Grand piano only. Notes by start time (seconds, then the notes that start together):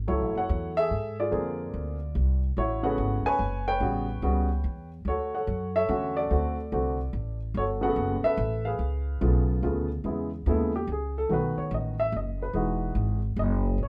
0.08 F#3 A3 E4 A4 C#5
0.38 A4 C#5 F#5
0.77 G#4 A4 E5
1.20 F4 G#4 D5
1.31 D3 A#3 C4 G#4
2.58 E4 F#4 C#5
2.83 C#3 A3 B3 F#4 B4 C#5 F#5
3.26 B4 C#5 G#5
3.68 B4 C#5 G5
3.81 C#3 G3 B3 F#4
4.23 C#3 G3 B3 F#4
5.08 F#4 A4 C#5
5.35 A4 C#5 F#5
5.76 A4 C#5 E5
5.89 D3 A3 C#4 F#4
6.17 F#4 A4 D5
6.31 D3 A3 C4 F#4
6.72 D3 A3 C4 F#4
7.57 F#4 A4 C#5
7.81 C#3 A3 B3 F#4 A4 B4 F#5
8.24 A4 B4 E5
8.65 G#4 B4 F5
9.21 C#3 A3 B3 F4
9.63 C#3 A3 B3 F4
10.05 C#3 G#3 B3 E4
10.47 C#3 G#3 B3 E4 A4
10.76 G4
10.92 G#4
11.18 A4
11.30 D#3 A3 B3 F#4 B4
11.58 C#5
11.74 D#5
12.00 E5
12.17 D#5
12.42 B4
12.55 E3 G#3 D#4 F#4
13.39 D#5
13.83 C#5